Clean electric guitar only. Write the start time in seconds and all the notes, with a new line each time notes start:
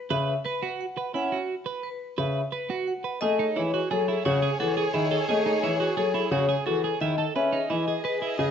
0.10 B4
0.46 B4
0.63 F#4
0.97 B4
1.14 E4
1.32 F#4
1.66 B4
2.18 B4
2.52 B4
2.70 F#4
3.04 B4
3.22 G#4
3.39 D#4
3.56 E4
3.74 F#4
3.91 G#4
4.08 E4
4.25 F#4
4.42 G#4
4.60 F#4
4.77 G#4
4.94 E4
5.11 A4
5.29 G#4
5.46 D#4
5.63 E4
5.80 F#4
5.97 G#4
6.14 E4
6.32 F#4
6.49 G#4
6.67 F#4
6.84 G#4
7.01 E4
7.18 A4
7.36 B4
7.52 D#4
7.70 E4
7.88 G#4
8.05 B4
8.22 E4
8.39 G#4